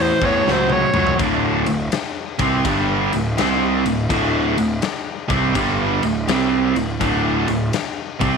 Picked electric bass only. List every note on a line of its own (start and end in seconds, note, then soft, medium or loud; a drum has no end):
0.00 0.10 E2 medium
0.22 0.41 E2 medium
0.47 0.83 C#2 medium
0.95 1.13 C#2 medium
1.19 1.63 D1 medium
1.67 1.90 D1 medium
1.92 muted picked electric bass stroke soft
2.40 2.63 C2 medium
2.65 3.09 G1 medium
3.14 3.37 D1 medium
3.41 3.83 C2 medium
3.85 4.09 D1 medium
4.10 4.54 D1 medium
4.58 4.82 D1 medium
4.84 muted picked electric bass stroke soft
5.30 5.54 C2 medium
5.55 6.00 G1 medium
6.03 6.27 D1 medium
6.27 6.72 C2 medium
6.76 7.00 D1 medium
7.01 7.45 D1 medium
7.48 7.72 D1 medium
7.74 muted picked electric bass stroke soft
8.21 8.37 C2 medium